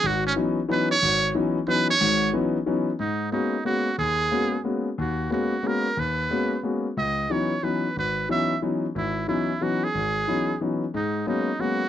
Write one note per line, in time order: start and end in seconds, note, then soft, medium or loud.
0.03 0.31 G#1 medium
0.03 0.26 F#4 medium
0.27 0.33 C#4 loud
0.36 0.58 E3 medium
0.36 0.58 F#3 medium
0.36 0.58 B3 medium
0.36 0.58 C#4 medium
0.36 0.59 D#4 medium
0.69 0.91 E3 medium
0.69 0.91 F#3 medium
0.69 0.91 B3 medium
0.69 0.91 C#4 medium
0.69 0.91 D#4 medium
0.69 0.90 B4 medium
0.91 1.32 C#5 loud
1.02 1.30 G#1 medium
1.35 1.57 E3 medium
1.35 1.57 F#3 medium
1.35 1.57 B3 medium
1.35 1.57 C#4 medium
1.35 1.57 D#4 medium
1.67 1.90 E3 medium
1.67 1.90 F#3 medium
1.67 1.90 B3 medium
1.67 1.90 C#4 medium
1.67 1.90 D#4 medium
1.67 1.88 B4 loud
1.90 2.31 C#5 loud
2.01 2.29 G#1 medium
2.01 2.29 G#2 medium
2.34 2.56 E3 medium
2.34 2.56 F#3 medium
2.34 2.56 B3 medium
2.34 2.56 C#4 medium
2.34 2.56 D#4 medium
2.66 2.89 E3 medium
2.66 2.89 F#3 medium
2.66 2.89 B3 medium
2.66 2.89 C#4 medium
2.66 2.89 D#4 medium
2.99 3.28 G#2 medium
2.99 3.30 D#4 medium
3.32 3.55 G#3 medium
3.32 3.55 A#3 soft
3.32 3.55 B3 soft
3.32 3.55 C#4 soft
3.32 3.63 D#4 medium
3.32 3.55 F#4 medium
3.65 3.88 G#3 medium
3.65 3.87 A#3 soft
3.65 3.88 B3 soft
3.65 3.88 C#4 soft
3.65 3.88 F#4 medium
3.65 3.96 F#4 medium
3.98 4.27 D#2 medium
3.98 4.61 G#4 medium
4.31 4.54 G#3 medium
4.31 4.54 A#3 medium
4.31 4.54 B3 medium
4.31 4.54 C#4 soft
4.31 4.54 F#4 medium
4.64 4.87 G#3 medium
4.64 4.87 A#3 soft
4.64 4.87 B3 soft
4.64 4.87 C#4 soft
4.64 4.87 F#4 medium
4.98 5.26 D#2 medium
4.98 5.30 F#4 medium
5.30 5.53 G#3 medium
5.30 5.53 A#3 medium
5.30 5.53 B3 medium
5.30 5.53 C#4 soft
5.30 5.53 F#4 medium
5.30 5.68 F#4 medium
5.63 5.86 G#3 medium
5.63 5.86 A#3 soft
5.63 5.86 B3 soft
5.63 5.86 C#4 soft
5.63 5.86 F#4 medium
5.67 6.01 A#4 medium
5.97 6.25 D#2 medium
5.97 6.64 B4 medium
6.30 6.53 G#3 medium
6.30 6.53 A#3 soft
6.30 6.53 B3 medium
6.30 6.53 C#4 soft
6.30 6.53 F#4 medium
6.63 6.86 G#3 soft
6.63 6.86 A#3 soft
6.63 6.86 B3 soft
6.63 6.86 C#4 soft
6.63 6.86 F#4 medium
6.97 7.25 C#2 medium
6.97 7.33 D#5 medium
7.30 7.52 E3 medium
7.30 7.52 F#3 medium
7.30 7.52 B3 soft
7.30 7.52 C#4 medium
7.30 7.52 D#4 medium
7.30 7.66 C#5 medium
7.63 7.85 E3 soft
7.63 7.85 F#3 soft
7.63 7.85 B3 soft
7.63 7.85 C#4 soft
7.63 7.86 D#4 medium
7.63 7.96 B4 medium
7.96 8.24 G#1 medium
7.96 8.28 B4 medium
8.29 8.51 E3 medium
8.29 8.51 F#3 soft
8.29 8.51 B3 medium
8.29 8.52 C#4 medium
8.29 8.52 D#4 medium
8.29 8.61 E5 medium
8.62 8.84 E3 medium
8.62 8.84 F#3 soft
8.62 8.84 B3 soft
8.62 8.84 C#4 soft
8.62 8.85 D#4 medium
8.95 9.23 G#1 medium
8.95 9.27 E4 medium
9.28 9.50 E3 medium
9.28 9.51 F#3 medium
9.28 9.51 B3 medium
9.28 9.51 C#4 medium
9.28 9.51 D#4 medium
9.28 9.64 E4 medium
9.61 9.83 E3 soft
9.61 9.84 F#3 soft
9.61 9.84 B3 soft
9.61 9.84 C#4 medium
9.61 9.84 D#4 medium
9.61 9.85 F#4 medium
9.84 10.61 G#4 medium
9.95 10.23 G#1 medium
10.28 10.50 E3 soft
10.28 10.50 F#3 medium
10.28 10.50 B3 medium
10.28 10.50 C#4 medium
10.28 10.50 D#4 medium
10.61 10.83 E3 soft
10.61 10.83 F#3 soft
10.61 10.83 B3 soft
10.61 10.83 C#4 soft
10.61 10.83 D#4 medium
10.94 11.22 G#2 medium
10.94 11.22 G#3 medium
10.94 11.25 D#4 medium
11.26 11.49 F#3 medium
11.26 11.49 G#3 medium
11.26 11.49 A#3 medium
11.26 11.49 B3 medium
11.26 11.49 C#4 medium
11.26 11.62 D#4 medium
11.59 11.82 F#3 medium
11.59 11.82 G#3 soft
11.59 11.82 A#3 soft
11.59 11.82 B3 soft
11.59 11.82 C#4 medium
11.59 11.89 F#4 medium